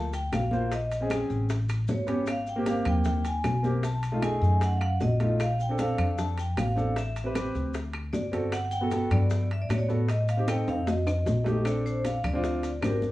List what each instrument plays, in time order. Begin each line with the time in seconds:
Already playing: upright bass D2
0.12 vibraphone G5, high bongo, high conga, high timbale, maracas
0.32 upright bass A#1, vibraphone F5, high bongo, low bongo, high conga, high timbale, low timbale, claves, maracas
0.51 grand piano A#3 F4 C5, high bongo, high conga, maracas
0.71 vibraphone D#5, high bongo, high conga, high timbale, maracas
0.91 high conga, high timbale, maracas
1.01 grand piano C4 C#4 G#4
1.10 grand piano C4 C#4 G#4, high bongo, high conga, high timbale, low timbale, claves, maracas
1.30 upright bass A1, high bongo, high conga, maracas
1.49 high bongo, high conga, high timbale, maracas
1.69 high bongo, high conga, high timbale, claves, maracas
1.88 upright bass G#1, vibraphone C#5, high bongo, low bongo, high conga, low timbale, maracas
2.07 grand piano B3 C#4 G4, high bongo, high conga, high timbale, maracas
2.26 vibraphone F5, high bongo, high conga, high timbale, claves, maracas
2.46 vibraphone G5, high conga, maracas
2.56 grand piano A#3 C4 G4
2.66 grand piano A#3 C4 G4, vibraphone F5, high bongo, high conga, high timbale, low timbale, maracas
2.85 upright bass D#2, vibraphone G5, high bongo, high conga, low conga, high timbale, claves, maracas
3.04 vibraphone G5, high bongo, high conga, low conga, maracas
3.25 vibraphone G#5, high bongo, high conga, high timbale, maracas
3.44 upright bass B1, high bongo, low bongo, high conga, high timbale, low timbale, claves, maracas
3.63 grand piano A#3 C4 G4, high bongo, high conga, maracas
3.83 vibraphone A5, high bongo, high conga, high timbale, maracas
4.03 high conga, high timbale, maracas
4.12 grand piano A3 D#4 F4
4.22 grand piano A3 D#4 G#4, vibraphone G#5, high bongo, high conga, high timbale, low timbale, claves, maracas
4.42 upright bass F#2, high bongo, high conga, maracas
4.61 vibraphone F#5, high bongo, high conga, high timbale, maracas
4.77 vibraphone F5, high bongo, high conga, claves
4.81 vibraphone F#5, high timbale
5.00 upright bass A#1, vibraphone D#5, high bongo, low bongo, high conga, low timbale, maracas
5.20 grand piano A3 D#4 F4, high bongo, high conga, high timbale, maracas
5.40 vibraphone F5, high bongo, high conga, high timbale, claves, maracas
5.59 vibraphone G5, high conga, maracas
5.69 grand piano C4 D4 A4
5.78 grand piano C4 D4 A4, vibraphone F5, high bongo, high conga, high timbale, low timbale, maracas
5.98 upright bass F2, high bongo, high conga, low conga, high timbale, claves, maracas
6.18 vibraphone A5, high bongo, high conga, low conga, maracas
6.37 vibraphone G5, high bongo, high conga, high timbale, maracas
6.57 upright bass A1, vibraphone F5, high bongo, low bongo, high conga, high timbale, low timbale, claves, maracas
6.75 grand piano C4 D4 A4, high bongo, high conga, maracas
6.96 vibraphone E5, high bongo, high timbale, maracas
7.16 high conga, high timbale, maracas
7.24 grand piano C4 G4 B4
7.34 grand piano C4 G4 B4, high bongo, high conga, high timbale, low timbale, claves, maracas
7.55 upright bass D2, high bongo, high conga, maracas
7.74 high bongo, high conga, high timbale, maracas
7.94 high bongo, high conga, high timbale, claves
8.13 upright bass G1, vibraphone D5, high bongo, low bongo, high conga, low timbale, maracas
8.32 grand piano C4 F#4 A4, high bongo, high conga, high timbale, maracas
8.52 vibraphone F#5, high bongo, high conga, high timbale, claves, maracas
8.65 vibraphone F#5
8.71 vibraphone G5, high conga, maracas
8.81 grand piano B3 F#4 A4
8.91 grand piano B3 F#4 A4, high bongo, high conga, high timbale, low timbale, maracas
9.10 upright bass G2, vibraphone D5, high bongo, high conga, low conga, high timbale, claves, maracas
9.30 high bongo, high conga, maracas
9.50 vibraphone E5, high bongo, high conga, high timbale
9.62 vibraphone D5
9.69 upright bass A2, vibraphone C#5, high bongo, low bongo, high conga, high timbale, low timbale, claves, maracas
9.78 vibraphone D5
9.88 grand piano B3 F#4 A4, high bongo, high conga, maracas
10.09 vibraphone D#5, high bongo, high timbale, maracas
10.28 vibraphone F5, high conga, high timbale, maracas
10.37 grand piano C4 D#4 G4
10.47 grand piano C4 D#4 A4, vibraphone G5, high bongo, high conga, high timbale, low timbale, claves, maracas
10.68 upright bass F2, vibraphone F5, high bongo, high conga, high timbale, maracas
10.87 vibraphone D#5, high bongo, low timbale, maracas
11.07 high bongo, high conga, high timbale, claves, maracas
11.26 upright bass A#1, high bongo, low bongo, high conga, low timbale, maracas
11.44 grand piano A3 D#4 G4, high bongo, high conga, low timbale, maracas
11.64 grand piano C4 D4 A4, high bongo, high timbale, claves, maracas
11.86 vibraphone C5, high conga, maracas
12.05 vibraphone F5, high bongo, high conga, high timbale, low timbale, maracas
12.23 upright bass D2, vibraphone D5, high bongo, high conga, low conga, high timbale, claves, maracas
12.33 grand piano C4 D4 F4
12.44 high bongo, high conga, maracas
12.63 high bongo, high conga, high timbale, maracas
12.81 upright bass G#1, grand piano C4 D4 G4, vibraphone A#4, high bongo, low bongo, high conga, high timbale, low timbale, claves, maracas
13.02 high bongo, high conga, maracas